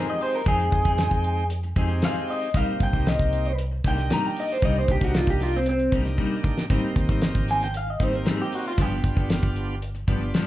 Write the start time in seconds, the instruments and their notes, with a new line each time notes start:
Already playing: tonewheel organ G#3 C4 D#4 G4, clean electric guitar C4 D#4 G#4
0.10 clean electric guitar D#5
0.20 clean electric guitar C5, muted clean electric guitar stroke, open hi-hat
0.33 clean electric guitar A#4, muted clean electric guitar stroke
0.46 fingered electric bass F2, clean electric guitar F3 C4 D#4 G#4, tonewheel organ G#3 C4 D#4 G5, kick, closed hi-hat
0.59 closed hi-hat
0.72 fingered electric bass F2, muted clean electric guitar stroke, kick, closed hi-hat
0.85 fingered electric bass F2, clean electric guitar C4 D#4 G#4, kick, closed hi-hat
0.98 muted clean electric guitar stroke, snare, closed hi-hat
1.11 fingered electric bass F2, muted clean electric guitar stroke, kick
1.24 closed hi-hat
1.37 muted clean electric guitar stroke
1.50 closed hi-hat
1.63 muted clean electric guitar stroke, closed hi-hat
1.76 fingered electric bass F2, clean electric guitar F3 C4 D#4 G#4, tonewheel organ G#3 C4 D#4 G4, kick, closed hi-hat
1.89 muted clean electric guitar stroke, closed hi-hat
2.02 clean electric guitar F3 C4 D#4 G#4 F5, snare, closed hi-hat
2.28 clean electric guitar D#5, muted clean electric guitar stroke, open hi-hat
2.42 muted clean electric guitar stroke
2.54 fingered electric bass C2, clean electric guitar C3 G3 A#3 D#4 F5, tonewheel organ A#3 C4 D#4 G4, kick, closed hi-hat
2.80 fingered electric bass G2, clean electric guitar G5, muted clean electric guitar stroke, kick, closed hi-hat
2.93 fingered electric bass C2, clean electric guitar G3 A#3 D#4, kick
3.06 clean electric guitar D#5, muted clean electric guitar stroke, snare, closed hi-hat
3.19 fingered electric bass C2, muted clean electric guitar stroke, kick, closed hi-hat
3.33 closed hi-hat
3.45 muted clean electric guitar stroke, closed hi-hat
3.59 closed hi-hat
3.72 muted clean electric guitar stroke
3.84 fingered electric bass C2, clean electric guitar C3 G3 A#3 D#4 G5, tonewheel organ A#3 D4 D#4 G4, kick, closed hi-hat
3.97 muted clean electric guitar stroke, snare, closed hi-hat
4.10 clean electric guitar C3 G3 A#3 D#4 A#5, snare, closed hi-hat
4.27 clean electric guitar G5
4.36 clean electric guitar D#5, muted clean electric guitar stroke, open hi-hat
4.49 clean electric guitar C5, muted clean electric guitar stroke
4.62 fingered electric bass C2, clean electric guitar C3 G3 A#3 D#4 D#5, tonewheel organ A#3 D4 D#4 G4, kick, closed hi-hat
4.76 clean electric guitar C5, closed hi-hat
4.88 fingered electric bass C2, clean electric guitar G4, muted clean electric guitar stroke, kick, closed hi-hat
5.01 fingered electric bass C2, clean electric guitar G3 A#3 D#4 F#4, kick, closed hi-hat
5.14 clean electric guitar F4, muted clean electric guitar stroke, snare, closed hi-hat
5.27 fingered electric bass C2, clean electric guitar G4, muted clean electric guitar stroke, kick
5.40 clean electric guitar F4, snare, open hi-hat
5.53 clean electric guitar C4, muted clean electric guitar stroke
5.66 clean electric guitar C4, closed hi-hat
5.79 muted clean electric guitar stroke, closed hi-hat
5.91 fingered electric bass C2, clean electric guitar C3 G3 A#3 D#4, tonewheel organ A#3 D4 D#4 G4, kick, closed hi-hat
6.05 muted clean electric guitar stroke, snare, closed hi-hat
6.18 clean electric guitar C3 G3 A#3 D#4, kick
6.44 muted clean electric guitar stroke, kick
6.57 muted clean electric guitar stroke, snare
6.70 fingered electric bass G#1, clean electric guitar G#2 G3 C4 D#4, tonewheel organ A#3 C4 D#4 G4, kick, closed hi-hat
6.96 fingered electric bass D#2, muted clean electric guitar stroke, kick, closed hi-hat
7.09 fingered electric bass G#1, clean electric guitar G3 C4 D#4, kick
7.22 muted clean electric guitar stroke, snare, closed hi-hat
7.35 fingered electric bass G#1, muted clean electric guitar stroke, kick, closed hi-hat
7.48 clean electric guitar G#5, snare, closed hi-hat
7.61 clean electric guitar G5, muted clean electric guitar stroke, snare, closed hi-hat
7.74 clean electric guitar F5, closed hi-hat
7.87 clean electric guitar D#5, muted clean electric guitar stroke
7.99 fingered electric bass G#1, clean electric guitar G#2 G3 C4 D#4 C5, tonewheel organ A#3 C4 D#4 G4, kick, closed hi-hat
8.12 clean electric guitar A#4, muted clean electric guitar stroke, closed hi-hat
8.25 clean electric guitar G#2 G3 C4 D#4 G#4, snare, closed hi-hat
8.42 clean electric guitar G4
8.51 clean electric guitar F#4, muted clean electric guitar stroke, open hi-hat
8.64 clean electric guitar F4, muted clean electric guitar stroke
8.77 fingered electric bass G1, clean electric guitar G2 F3 B3 D4, tonewheel organ B3 D4 F4 G4, kick, closed hi-hat
8.81 clean electric guitar G4
8.91 closed hi-hat
9.03 fingered electric bass G1, muted clean electric guitar stroke, kick, closed hi-hat
9.16 fingered electric bass G1, clean electric guitar F3 B3 D4, kick, closed hi-hat
9.30 muted clean electric guitar stroke, snare, closed hi-hat
9.43 fingered electric bass G1, muted clean electric guitar stroke, kick
9.56 closed hi-hat
9.69 muted clean electric guitar stroke
9.82 closed hi-hat
9.95 muted clean electric guitar stroke, closed hi-hat
10.07 fingered electric bass G1, clean electric guitar G2 F3 B3 D4, tonewheel organ B3 D4 F4 G4 D5, kick, closed hi-hat
10.21 muted clean electric guitar stroke, closed hi-hat
10.34 clean electric guitar G2 F3 B3 D4, tonewheel organ F5, snare, closed hi-hat